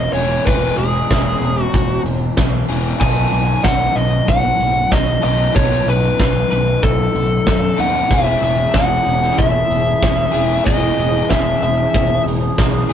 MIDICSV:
0, 0, Header, 1, 7, 480
1, 0, Start_track
1, 0, Key_signature, 4, "major"
1, 0, Tempo, 637620
1, 343, Time_signature, 4, 2, 24, 8
1, 9734, End_track
2, 0, Start_track
2, 0, Title_t, "Lead electric guitar"
2, 0, Program_c, 0, 29
2, 0, Note_on_c, 0, 75, 98
2, 94, Note_off_c, 0, 75, 0
2, 97, Note_on_c, 0, 73, 86
2, 341, Note_on_c, 0, 71, 89
2, 347, Note_off_c, 0, 73, 0
2, 584, Note_off_c, 0, 71, 0
2, 587, Note_on_c, 0, 68, 73
2, 1219, Note_off_c, 0, 68, 0
2, 1219, Note_on_c, 0, 66, 73
2, 1512, Note_off_c, 0, 66, 0
2, 2261, Note_on_c, 0, 80, 104
2, 2739, Note_off_c, 0, 80, 0
2, 2742, Note_on_c, 0, 78, 98
2, 2978, Note_on_c, 0, 75, 94
2, 2987, Note_off_c, 0, 78, 0
2, 3225, Note_off_c, 0, 75, 0
2, 3226, Note_on_c, 0, 78, 86
2, 3706, Note_on_c, 0, 75, 96
2, 3715, Note_off_c, 0, 78, 0
2, 3932, Note_off_c, 0, 75, 0
2, 3941, Note_on_c, 0, 75, 87
2, 4178, Note_off_c, 0, 75, 0
2, 4181, Note_on_c, 0, 73, 94
2, 4426, Note_off_c, 0, 73, 0
2, 4429, Note_on_c, 0, 71, 85
2, 4668, Note_off_c, 0, 71, 0
2, 4677, Note_on_c, 0, 71, 89
2, 4893, Note_off_c, 0, 71, 0
2, 4902, Note_on_c, 0, 71, 80
2, 5144, Note_off_c, 0, 71, 0
2, 5147, Note_on_c, 0, 69, 81
2, 5871, Note_on_c, 0, 78, 83
2, 5884, Note_off_c, 0, 69, 0
2, 6111, Note_off_c, 0, 78, 0
2, 6117, Note_on_c, 0, 76, 91
2, 6342, Note_off_c, 0, 76, 0
2, 6351, Note_on_c, 0, 76, 82
2, 6585, Note_on_c, 0, 78, 89
2, 6592, Note_off_c, 0, 76, 0
2, 7061, Note_on_c, 0, 76, 88
2, 7076, Note_off_c, 0, 78, 0
2, 8017, Note_off_c, 0, 76, 0
2, 8020, Note_on_c, 0, 75, 94
2, 8504, Note_off_c, 0, 75, 0
2, 8507, Note_on_c, 0, 76, 87
2, 8746, Note_off_c, 0, 76, 0
2, 8755, Note_on_c, 0, 76, 85
2, 9200, Note_off_c, 0, 76, 0
2, 9734, End_track
3, 0, Start_track
3, 0, Title_t, "Ambient pad"
3, 0, Program_c, 1, 92
3, 6095, Note_on_c, 1, 87, 82
3, 6098, Note_on_c, 1, 64, 69
3, 6099, Note_on_c, 1, 68, 73
3, 9734, Note_off_c, 1, 64, 0
3, 9734, Note_off_c, 1, 68, 0
3, 9734, Note_off_c, 1, 87, 0
3, 9734, End_track
4, 0, Start_track
4, 0, Title_t, "Clean electric guitar"
4, 0, Program_c, 2, 27
4, 0, Note_on_c, 2, 56, 64
4, 0, Note_on_c, 2, 59, 76
4, 0, Note_on_c, 2, 68, 80
4, 326, Note_off_c, 2, 68, 0
4, 334, Note_off_c, 2, 56, 0
4, 339, Note_on_c, 2, 52, 76
4, 345, Note_off_c, 2, 59, 0
4, 348, Note_on_c, 2, 56, 80
4, 348, Note_on_c, 2, 59, 80
4, 364, Note_on_c, 2, 68, 89
4, 1045, Note_off_c, 2, 52, 0
4, 1050, Note_off_c, 2, 56, 0
4, 1054, Note_off_c, 2, 68, 0
4, 1063, Note_on_c, 2, 68, 80
4, 1074, Note_off_c, 2, 59, 0
4, 1077, Note_on_c, 2, 59, 69
4, 1079, Note_on_c, 2, 56, 73
4, 1083, Note_on_c, 2, 52, 71
4, 2245, Note_off_c, 2, 68, 0
4, 2253, Note_off_c, 2, 56, 0
4, 2255, Note_off_c, 2, 52, 0
4, 2265, Note_on_c, 2, 47, 87
4, 2266, Note_on_c, 2, 51, 85
4, 2272, Note_off_c, 2, 59, 0
4, 2273, Note_on_c, 2, 54, 86
4, 2275, Note_on_c, 2, 59, 89
4, 2276, Note_on_c, 2, 63, 92
4, 2281, Note_on_c, 2, 69, 93
4, 2967, Note_off_c, 2, 51, 0
4, 2981, Note_off_c, 2, 69, 0
4, 2984, Note_on_c, 2, 69, 86
4, 2985, Note_off_c, 2, 63, 0
4, 2988, Note_on_c, 2, 63, 80
4, 2989, Note_off_c, 2, 59, 0
4, 2992, Note_on_c, 2, 59, 87
4, 2993, Note_off_c, 2, 54, 0
4, 2996, Note_on_c, 2, 54, 79
4, 3000, Note_off_c, 2, 47, 0
4, 3003, Note_on_c, 2, 47, 71
4, 3003, Note_on_c, 2, 51, 76
4, 4165, Note_off_c, 2, 69, 0
4, 4171, Note_off_c, 2, 54, 0
4, 4175, Note_off_c, 2, 47, 0
4, 4175, Note_off_c, 2, 51, 0
4, 4183, Note_on_c, 2, 47, 75
4, 4189, Note_on_c, 2, 54, 83
4, 4190, Note_on_c, 2, 51, 92
4, 4194, Note_off_c, 2, 63, 0
4, 4195, Note_off_c, 2, 59, 0
4, 4197, Note_on_c, 2, 63, 93
4, 4198, Note_on_c, 2, 59, 95
4, 4204, Note_on_c, 2, 69, 90
4, 4885, Note_off_c, 2, 47, 0
4, 4886, Note_off_c, 2, 69, 0
4, 4888, Note_off_c, 2, 54, 0
4, 4889, Note_off_c, 2, 51, 0
4, 4896, Note_on_c, 2, 69, 84
4, 4898, Note_off_c, 2, 63, 0
4, 4901, Note_on_c, 2, 63, 83
4, 4903, Note_off_c, 2, 59, 0
4, 4906, Note_on_c, 2, 54, 76
4, 4906, Note_on_c, 2, 59, 80
4, 4914, Note_on_c, 2, 47, 66
4, 4914, Note_on_c, 2, 51, 74
4, 6082, Note_off_c, 2, 69, 0
4, 6088, Note_off_c, 2, 54, 0
4, 6092, Note_off_c, 2, 47, 0
4, 6092, Note_off_c, 2, 51, 0
4, 6097, Note_on_c, 2, 52, 80
4, 6100, Note_on_c, 2, 56, 84
4, 6104, Note_off_c, 2, 59, 0
4, 6107, Note_on_c, 2, 59, 84
4, 6111, Note_on_c, 2, 68, 82
4, 6119, Note_off_c, 2, 63, 0
4, 6813, Note_off_c, 2, 68, 0
4, 6816, Note_on_c, 2, 68, 77
4, 6822, Note_off_c, 2, 59, 0
4, 6825, Note_on_c, 2, 59, 75
4, 6829, Note_off_c, 2, 56, 0
4, 6832, Note_on_c, 2, 56, 66
4, 6833, Note_off_c, 2, 52, 0
4, 6836, Note_on_c, 2, 52, 70
4, 8004, Note_off_c, 2, 52, 0
4, 8005, Note_off_c, 2, 68, 0
4, 8013, Note_off_c, 2, 56, 0
4, 8013, Note_on_c, 2, 52, 88
4, 8021, Note_off_c, 2, 59, 0
4, 8024, Note_on_c, 2, 56, 94
4, 8024, Note_on_c, 2, 59, 88
4, 8037, Note_on_c, 2, 68, 93
4, 8724, Note_off_c, 2, 52, 0
4, 8729, Note_off_c, 2, 56, 0
4, 8736, Note_off_c, 2, 68, 0
4, 8746, Note_on_c, 2, 68, 90
4, 8756, Note_off_c, 2, 59, 0
4, 8759, Note_on_c, 2, 56, 68
4, 8759, Note_on_c, 2, 59, 73
4, 8762, Note_on_c, 2, 52, 66
4, 9734, Note_off_c, 2, 52, 0
4, 9734, Note_off_c, 2, 56, 0
4, 9734, Note_off_c, 2, 59, 0
4, 9734, Note_off_c, 2, 68, 0
4, 9734, End_track
5, 0, Start_track
5, 0, Title_t, "Overdriven electric guitar"
5, 0, Program_c, 3, 29
5, 0, Note_on_c, 3, 52, 78
5, 0, Note_on_c, 3, 56, 87
5, 0, Note_on_c, 3, 59, 86
5, 0, Note_on_c, 3, 64, 83
5, 0, Note_on_c, 3, 68, 95
5, 91, Note_off_c, 3, 52, 0
5, 94, Note_off_c, 3, 56, 0
5, 100, Note_off_c, 3, 68, 0
5, 102, Note_off_c, 3, 64, 0
5, 109, Note_on_c, 3, 68, 74
5, 117, Note_on_c, 3, 64, 77
5, 121, Note_off_c, 3, 59, 0
5, 124, Note_on_c, 3, 59, 63
5, 127, Note_on_c, 3, 56, 59
5, 131, Note_on_c, 3, 52, 60
5, 331, Note_off_c, 3, 68, 0
5, 336, Note_off_c, 3, 64, 0
5, 337, Note_off_c, 3, 52, 0
5, 340, Note_off_c, 3, 56, 0
5, 346, Note_on_c, 3, 52, 82
5, 353, Note_off_c, 3, 59, 0
5, 353, Note_on_c, 3, 56, 83
5, 356, Note_on_c, 3, 59, 78
5, 365, Note_on_c, 3, 64, 86
5, 372, Note_on_c, 3, 68, 85
5, 2006, Note_off_c, 3, 52, 0
5, 2009, Note_off_c, 3, 56, 0
5, 2013, Note_off_c, 3, 68, 0
5, 2016, Note_off_c, 3, 64, 0
5, 2022, Note_on_c, 3, 68, 70
5, 2025, Note_on_c, 3, 64, 74
5, 2029, Note_off_c, 3, 59, 0
5, 2032, Note_on_c, 3, 59, 71
5, 2035, Note_on_c, 3, 56, 69
5, 2039, Note_on_c, 3, 52, 59
5, 2246, Note_off_c, 3, 68, 0
5, 2247, Note_off_c, 3, 64, 0
5, 2247, Note_on_c, 3, 47, 85
5, 2249, Note_off_c, 3, 52, 0
5, 2250, Note_off_c, 3, 56, 0
5, 2252, Note_on_c, 3, 51, 80
5, 2253, Note_on_c, 3, 54, 79
5, 2260, Note_off_c, 3, 59, 0
5, 2262, Note_on_c, 3, 63, 86
5, 2263, Note_on_c, 3, 59, 88
5, 2268, Note_on_c, 3, 69, 95
5, 3917, Note_off_c, 3, 47, 0
5, 3919, Note_off_c, 3, 51, 0
5, 3920, Note_off_c, 3, 54, 0
5, 3920, Note_off_c, 3, 69, 0
5, 3929, Note_on_c, 3, 69, 71
5, 3932, Note_off_c, 3, 63, 0
5, 3935, Note_off_c, 3, 59, 0
5, 3935, Note_on_c, 3, 63, 76
5, 3938, Note_on_c, 3, 59, 69
5, 3945, Note_on_c, 3, 51, 68
5, 3945, Note_on_c, 3, 54, 74
5, 3954, Note_on_c, 3, 47, 66
5, 4158, Note_off_c, 3, 47, 0
5, 4158, Note_off_c, 3, 69, 0
5, 4164, Note_off_c, 3, 51, 0
5, 4167, Note_off_c, 3, 54, 0
5, 4167, Note_on_c, 3, 47, 86
5, 4173, Note_on_c, 3, 51, 82
5, 4174, Note_off_c, 3, 59, 0
5, 4175, Note_on_c, 3, 54, 88
5, 4177, Note_on_c, 3, 59, 79
5, 4182, Note_off_c, 3, 63, 0
5, 4185, Note_on_c, 3, 63, 93
5, 4186, Note_on_c, 3, 69, 86
5, 5837, Note_off_c, 3, 69, 0
5, 5838, Note_off_c, 3, 47, 0
5, 5841, Note_off_c, 3, 51, 0
5, 5842, Note_off_c, 3, 54, 0
5, 5846, Note_on_c, 3, 69, 72
5, 5850, Note_off_c, 3, 63, 0
5, 5853, Note_off_c, 3, 59, 0
5, 5853, Note_on_c, 3, 63, 68
5, 5856, Note_on_c, 3, 59, 65
5, 5858, Note_on_c, 3, 54, 70
5, 5863, Note_on_c, 3, 51, 57
5, 5868, Note_on_c, 3, 47, 61
5, 6077, Note_off_c, 3, 69, 0
5, 6083, Note_off_c, 3, 54, 0
5, 6086, Note_off_c, 3, 51, 0
5, 6088, Note_off_c, 3, 47, 0
5, 6092, Note_on_c, 3, 52, 83
5, 6092, Note_on_c, 3, 56, 89
5, 6094, Note_off_c, 3, 59, 0
5, 6097, Note_on_c, 3, 59, 82
5, 6102, Note_off_c, 3, 63, 0
5, 6105, Note_on_c, 3, 64, 87
5, 6115, Note_on_c, 3, 68, 91
5, 7755, Note_off_c, 3, 68, 0
5, 7757, Note_off_c, 3, 64, 0
5, 7763, Note_off_c, 3, 52, 0
5, 7763, Note_off_c, 3, 56, 0
5, 7764, Note_on_c, 3, 68, 78
5, 7766, Note_on_c, 3, 64, 76
5, 7772, Note_off_c, 3, 59, 0
5, 7775, Note_on_c, 3, 59, 71
5, 7780, Note_on_c, 3, 52, 68
5, 7780, Note_on_c, 3, 56, 71
5, 7998, Note_off_c, 3, 68, 0
5, 7999, Note_off_c, 3, 64, 0
5, 8003, Note_off_c, 3, 52, 0
5, 8006, Note_off_c, 3, 56, 0
5, 8012, Note_on_c, 3, 52, 79
5, 8020, Note_on_c, 3, 56, 87
5, 8022, Note_off_c, 3, 59, 0
5, 8025, Note_on_c, 3, 59, 84
5, 8030, Note_on_c, 3, 64, 89
5, 8033, Note_on_c, 3, 68, 87
5, 9686, Note_off_c, 3, 52, 0
5, 9690, Note_off_c, 3, 56, 0
5, 9694, Note_off_c, 3, 64, 0
5, 9696, Note_off_c, 3, 68, 0
5, 9704, Note_on_c, 3, 68, 81
5, 9716, Note_off_c, 3, 59, 0
5, 9734, Note_off_c, 3, 68, 0
5, 9734, End_track
6, 0, Start_track
6, 0, Title_t, "Fingered electric bass"
6, 0, Program_c, 4, 33
6, 95, Note_on_c, 4, 28, 80
6, 274, Note_off_c, 4, 28, 0
6, 351, Note_on_c, 4, 28, 85
6, 524, Note_off_c, 4, 28, 0
6, 582, Note_on_c, 4, 28, 84
6, 758, Note_off_c, 4, 28, 0
6, 833, Note_on_c, 4, 28, 85
6, 1004, Note_off_c, 4, 28, 0
6, 1061, Note_on_c, 4, 28, 87
6, 1237, Note_off_c, 4, 28, 0
6, 1309, Note_on_c, 4, 28, 86
6, 1482, Note_off_c, 4, 28, 0
6, 1536, Note_on_c, 4, 28, 80
6, 1713, Note_off_c, 4, 28, 0
6, 1788, Note_on_c, 4, 35, 88
6, 1961, Note_off_c, 4, 35, 0
6, 2026, Note_on_c, 4, 28, 83
6, 2199, Note_off_c, 4, 28, 0
6, 2261, Note_on_c, 4, 35, 86
6, 2436, Note_off_c, 4, 35, 0
6, 2500, Note_on_c, 4, 35, 83
6, 2675, Note_off_c, 4, 35, 0
6, 2740, Note_on_c, 4, 35, 83
6, 2915, Note_off_c, 4, 35, 0
6, 2977, Note_on_c, 4, 35, 86
6, 3153, Note_off_c, 4, 35, 0
6, 3219, Note_on_c, 4, 35, 87
6, 3394, Note_off_c, 4, 35, 0
6, 3464, Note_on_c, 4, 35, 83
6, 3637, Note_off_c, 4, 35, 0
6, 3702, Note_on_c, 4, 35, 90
6, 3876, Note_off_c, 4, 35, 0
6, 3944, Note_on_c, 4, 35, 82
6, 4117, Note_off_c, 4, 35, 0
6, 4185, Note_on_c, 4, 35, 88
6, 4358, Note_off_c, 4, 35, 0
6, 4412, Note_on_c, 4, 35, 89
6, 4590, Note_off_c, 4, 35, 0
6, 4663, Note_on_c, 4, 35, 86
6, 4837, Note_off_c, 4, 35, 0
6, 4907, Note_on_c, 4, 35, 86
6, 5079, Note_off_c, 4, 35, 0
6, 5142, Note_on_c, 4, 35, 80
6, 5316, Note_off_c, 4, 35, 0
6, 5380, Note_on_c, 4, 35, 73
6, 5555, Note_off_c, 4, 35, 0
6, 5617, Note_on_c, 4, 42, 84
6, 5793, Note_off_c, 4, 42, 0
6, 5863, Note_on_c, 4, 39, 75
6, 6037, Note_off_c, 4, 39, 0
6, 6103, Note_on_c, 4, 28, 85
6, 6277, Note_off_c, 4, 28, 0
6, 6334, Note_on_c, 4, 28, 85
6, 6511, Note_off_c, 4, 28, 0
6, 6577, Note_on_c, 4, 28, 86
6, 6754, Note_off_c, 4, 28, 0
6, 6822, Note_on_c, 4, 28, 83
6, 6997, Note_off_c, 4, 28, 0
6, 7065, Note_on_c, 4, 28, 79
6, 7239, Note_off_c, 4, 28, 0
6, 7297, Note_on_c, 4, 28, 77
6, 7474, Note_off_c, 4, 28, 0
6, 7544, Note_on_c, 4, 28, 83
6, 7719, Note_off_c, 4, 28, 0
6, 7782, Note_on_c, 4, 28, 80
6, 7958, Note_off_c, 4, 28, 0
6, 8027, Note_on_c, 4, 28, 86
6, 8201, Note_off_c, 4, 28, 0
6, 8259, Note_on_c, 4, 28, 86
6, 8436, Note_off_c, 4, 28, 0
6, 8515, Note_on_c, 4, 28, 80
6, 8686, Note_off_c, 4, 28, 0
6, 8744, Note_on_c, 4, 28, 85
6, 8919, Note_off_c, 4, 28, 0
6, 8993, Note_on_c, 4, 28, 85
6, 9166, Note_off_c, 4, 28, 0
6, 9229, Note_on_c, 4, 28, 83
6, 9403, Note_off_c, 4, 28, 0
6, 9474, Note_on_c, 4, 35, 89
6, 9647, Note_off_c, 4, 35, 0
6, 9703, Note_on_c, 4, 28, 83
6, 9734, Note_off_c, 4, 28, 0
6, 9734, End_track
7, 0, Start_track
7, 0, Title_t, "Drums"
7, 110, Note_on_c, 9, 42, 53
7, 185, Note_off_c, 9, 42, 0
7, 349, Note_on_c, 9, 42, 77
7, 353, Note_on_c, 9, 36, 105
7, 424, Note_off_c, 9, 42, 0
7, 428, Note_off_c, 9, 36, 0
7, 590, Note_on_c, 9, 42, 51
7, 665, Note_off_c, 9, 42, 0
7, 832, Note_on_c, 9, 36, 101
7, 834, Note_on_c, 9, 38, 95
7, 834, Note_on_c, 9, 42, 75
7, 908, Note_off_c, 9, 36, 0
7, 910, Note_off_c, 9, 38, 0
7, 910, Note_off_c, 9, 42, 0
7, 1070, Note_on_c, 9, 42, 63
7, 1146, Note_off_c, 9, 42, 0
7, 1309, Note_on_c, 9, 36, 101
7, 1310, Note_on_c, 9, 42, 75
7, 1384, Note_off_c, 9, 36, 0
7, 1385, Note_off_c, 9, 42, 0
7, 1550, Note_on_c, 9, 42, 61
7, 1625, Note_off_c, 9, 42, 0
7, 1785, Note_on_c, 9, 38, 107
7, 1785, Note_on_c, 9, 42, 81
7, 1788, Note_on_c, 9, 36, 102
7, 1861, Note_off_c, 9, 38, 0
7, 1861, Note_off_c, 9, 42, 0
7, 1863, Note_off_c, 9, 36, 0
7, 2020, Note_on_c, 9, 42, 57
7, 2096, Note_off_c, 9, 42, 0
7, 2260, Note_on_c, 9, 42, 79
7, 2265, Note_on_c, 9, 36, 97
7, 2336, Note_off_c, 9, 42, 0
7, 2340, Note_off_c, 9, 36, 0
7, 2503, Note_on_c, 9, 42, 57
7, 2578, Note_off_c, 9, 42, 0
7, 2740, Note_on_c, 9, 38, 98
7, 2740, Note_on_c, 9, 42, 71
7, 2744, Note_on_c, 9, 36, 100
7, 2815, Note_off_c, 9, 38, 0
7, 2815, Note_off_c, 9, 42, 0
7, 2820, Note_off_c, 9, 36, 0
7, 2982, Note_on_c, 9, 42, 58
7, 3058, Note_off_c, 9, 42, 0
7, 3223, Note_on_c, 9, 42, 72
7, 3224, Note_on_c, 9, 36, 92
7, 3298, Note_off_c, 9, 42, 0
7, 3300, Note_off_c, 9, 36, 0
7, 3465, Note_on_c, 9, 42, 62
7, 3540, Note_off_c, 9, 42, 0
7, 3702, Note_on_c, 9, 38, 103
7, 3702, Note_on_c, 9, 42, 77
7, 3703, Note_on_c, 9, 36, 100
7, 3777, Note_off_c, 9, 38, 0
7, 3777, Note_off_c, 9, 42, 0
7, 3779, Note_off_c, 9, 36, 0
7, 3947, Note_on_c, 9, 42, 59
7, 4022, Note_off_c, 9, 42, 0
7, 4185, Note_on_c, 9, 36, 105
7, 4187, Note_on_c, 9, 42, 75
7, 4260, Note_off_c, 9, 36, 0
7, 4262, Note_off_c, 9, 42, 0
7, 4426, Note_on_c, 9, 42, 52
7, 4501, Note_off_c, 9, 42, 0
7, 4664, Note_on_c, 9, 36, 99
7, 4668, Note_on_c, 9, 38, 101
7, 4668, Note_on_c, 9, 42, 71
7, 4740, Note_off_c, 9, 36, 0
7, 4743, Note_off_c, 9, 38, 0
7, 4743, Note_off_c, 9, 42, 0
7, 4906, Note_on_c, 9, 42, 56
7, 4982, Note_off_c, 9, 42, 0
7, 5142, Note_on_c, 9, 36, 104
7, 5142, Note_on_c, 9, 42, 70
7, 5217, Note_off_c, 9, 42, 0
7, 5218, Note_off_c, 9, 36, 0
7, 5382, Note_on_c, 9, 42, 60
7, 5457, Note_off_c, 9, 42, 0
7, 5622, Note_on_c, 9, 36, 102
7, 5622, Note_on_c, 9, 38, 105
7, 5622, Note_on_c, 9, 42, 77
7, 5697, Note_off_c, 9, 38, 0
7, 5697, Note_off_c, 9, 42, 0
7, 5698, Note_off_c, 9, 36, 0
7, 5867, Note_on_c, 9, 42, 60
7, 5942, Note_off_c, 9, 42, 0
7, 6103, Note_on_c, 9, 36, 98
7, 6104, Note_on_c, 9, 42, 83
7, 6178, Note_off_c, 9, 36, 0
7, 6179, Note_off_c, 9, 42, 0
7, 6350, Note_on_c, 9, 42, 57
7, 6425, Note_off_c, 9, 42, 0
7, 6578, Note_on_c, 9, 38, 102
7, 6578, Note_on_c, 9, 42, 76
7, 6581, Note_on_c, 9, 36, 98
7, 6653, Note_off_c, 9, 38, 0
7, 6653, Note_off_c, 9, 42, 0
7, 6657, Note_off_c, 9, 36, 0
7, 6819, Note_on_c, 9, 42, 63
7, 6894, Note_off_c, 9, 42, 0
7, 6943, Note_on_c, 9, 38, 30
7, 7018, Note_off_c, 9, 38, 0
7, 7062, Note_on_c, 9, 42, 73
7, 7065, Note_on_c, 9, 36, 90
7, 7137, Note_off_c, 9, 42, 0
7, 7140, Note_off_c, 9, 36, 0
7, 7305, Note_on_c, 9, 42, 57
7, 7380, Note_off_c, 9, 42, 0
7, 7547, Note_on_c, 9, 36, 110
7, 7552, Note_on_c, 9, 38, 109
7, 7552, Note_on_c, 9, 42, 72
7, 7623, Note_off_c, 9, 36, 0
7, 7627, Note_off_c, 9, 38, 0
7, 7627, Note_off_c, 9, 42, 0
7, 7793, Note_on_c, 9, 42, 57
7, 7868, Note_off_c, 9, 42, 0
7, 8028, Note_on_c, 9, 36, 104
7, 8029, Note_on_c, 9, 42, 75
7, 8104, Note_off_c, 9, 36, 0
7, 8105, Note_off_c, 9, 42, 0
7, 8276, Note_on_c, 9, 42, 50
7, 8351, Note_off_c, 9, 42, 0
7, 8511, Note_on_c, 9, 36, 94
7, 8511, Note_on_c, 9, 38, 102
7, 8511, Note_on_c, 9, 42, 73
7, 8586, Note_off_c, 9, 36, 0
7, 8586, Note_off_c, 9, 38, 0
7, 8586, Note_off_c, 9, 42, 0
7, 8756, Note_on_c, 9, 42, 55
7, 8831, Note_off_c, 9, 42, 0
7, 8992, Note_on_c, 9, 36, 94
7, 8996, Note_on_c, 9, 42, 68
7, 9067, Note_off_c, 9, 36, 0
7, 9071, Note_off_c, 9, 42, 0
7, 9241, Note_on_c, 9, 42, 64
7, 9317, Note_off_c, 9, 42, 0
7, 9472, Note_on_c, 9, 36, 110
7, 9474, Note_on_c, 9, 38, 104
7, 9474, Note_on_c, 9, 42, 77
7, 9548, Note_off_c, 9, 36, 0
7, 9549, Note_off_c, 9, 38, 0
7, 9549, Note_off_c, 9, 42, 0
7, 9708, Note_on_c, 9, 42, 60
7, 9734, Note_off_c, 9, 42, 0
7, 9734, End_track
0, 0, End_of_file